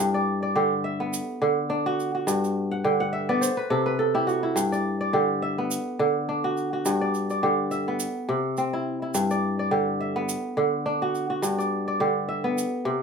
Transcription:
Already playing: E4 G4 A4
0.00 G2
0.14 D5
0.43 D5
0.56 D3 G4
0.84 E5
1.00 B3
1.13 shaker
1.42 D3
1.70 D4
1.86 F#4
2.00 shaker
2.15 F#4
2.27 G2, shaker
2.44 shaker
2.71 F#5
2.84 D3 G5
3.00 F#5
3.13 E5
3.29 B3 D5
3.41 C5, shaker
3.57 B4
3.70 C3 A4
3.86 B4
3.99 A4
4.15 E4 G4
4.27 F#4, shaker
4.43 E4
4.56 G2, shaker
4.72 D5, shaker
5.01 D5
5.13 D3 G4
5.42 E5
5.58 B3
5.71 shaker
5.99 D3
6.29 D4
6.44 F#4
6.57 shaker
6.73 F#4
6.85 G2, shaker
7.01 D5
7.14 shaker
7.30 D5, shaker
7.43 D3 G4
7.71 E5, shaker
7.88 B3
8.00 shaker
8.29 C3
8.57 C4, shaker
8.73 E4
9.02 E4
9.14 G2, shaker
9.30 D5, shaker
9.59 D5
9.71 D3 G4
10.00 E5
10.16 B3
10.29 shaker
10.57 D3
10.86 D4
11.02 F#4
11.15 shaker
11.30 F#4
11.42 G2, shaker
11.58 D5, shaker
11.88 D5
12.00 D3 G4
12.29 E5
12.44 B3
12.58 shaker
12.85 C3

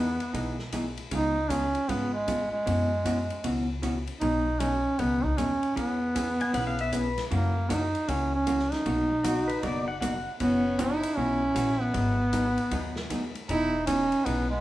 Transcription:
Already playing: E2 B3
0.20 ride
0.34 B1 E3 B3 D#4 G#4, kick, ride
0.59 snare
0.72 E3 B3 D#4 G#4, kick, hi-hat pedal, ride
0.97 ride
1.11 C#2 C#3 G#3 B3 D#4 F4 G#4, kick, ride
1.50 C#3 G#3 B3 C#4 F4 G#4, kick, hi-hat pedal, ride
1.75 ride
1.88 G#1 C#3 G#3 B3 F4 G#4, kick, ride
2.13 G#3
2.27 C#3 G#3 B3 F4 G#4, kick, hi-hat pedal, ride
2.52 G#3
2.66 F#2 B2 E3 B3 C#4 F#4, kick, ride
3.05 B2 E3 B3 C#4 F#4, kick, hi-hat pedal, ride
3.30 ride
3.44 C#2 B2 E3 B3 C#4 F#4, kick, ride
3.82 B2 E3 B3 C#4 F#4, kick, hi-hat pedal, ride
4.07 ride
4.20 B1 B2 D#3 F#3 B3 D#4 G#4, kick, ride
4.60 B2 D#3 F#3 B3 C#4 D#4 G#4, kick, hi-hat pedal, ride
4.99 C#2 B2 D#3 F#3 B3 D#4 G#4, kick, ride
5.24 D#4, kick
5.38 D#2 B2 D#3 F#3 B3 C#4 D#4 G#4, hi-hat pedal, ride
5.63 ride
5.76 E2 E3 B3 C#4 G#4, kick, ride
6.15 E3 B3 C#4 G#4, kick, hi-hat pedal, ride
6.41 G#5, ride
6.53 B1 E3 B3 C#4 G#4 F#5, kick, ride
6.67 F5
6.79 E5, ride
6.92 E3 B3 C#4 G#4 B4, kick, hi-hat pedal, ride
7.18 snare, ride
7.31 F#2 C#3 E3 A#3 C#4 F#4, kick, ride
7.69 C#3 E3 A#3 C#4 D#4 F#4, kick, hi-hat pedal, ride
7.95 ride
8.08 C#2 C#3 E3 A#3 C#4 F#4, kick, ride
8.34 C#4
8.46 C#3 E3 A#3 C#4 F#4, kick, hi-hat pedal, ride
8.59 snare
8.72 D#4, snare, ride
8.86 B1 B2 F#3 A#3 D#4 F#4, kick, ride
9.24 B2 F#3 A#3 D#4 F#4, kick, hi-hat pedal, ride
9.48 B4, ride
9.63 F#1 B2 F#3 A#3 D#4 F#4 D5, kick, ride
9.88 F#5
10.01 B2 F#3 A#3 D#4 F#4 F#5, kick, hi-hat pedal, ride
10.40 F#1 B2 E3 B3 C#4 F#4, kick, ride
10.78 B2 E3 B3 C#4 D#4 E4 F#4, kick, hi-hat pedal, ride
11.03 ride
11.17 B1 B2 E3 B3 C#4 E4 F#4, kick
11.55 A#1 B2 E3 B3 C#4 F#4, kick, hi-hat pedal, ride
11.80 B3
11.94 G#1 D#3 F#3 B3 D#4 G#4, kick, ride
12.33 D#3 F#3 B3 D#4 G#4, kick, hi-hat pedal, ride
12.58 ride
12.71 D#2 D#3 F#3 B3 D#4 G#4, kick, ride
12.96 snare
13.10 D#3 F#3 B3 D#4 G#4, kick, hi-hat pedal, ride
13.35 ride
13.49 E1 E3 B3 D#4 E4 G#4, kick, ride
13.86 E3 B3 C#4 D#4 G#4, kick, hi-hat pedal, ride
14.12 ride
14.24 B1 E3 B3 D#4 G#4, kick, ride
14.49 G#3 B3

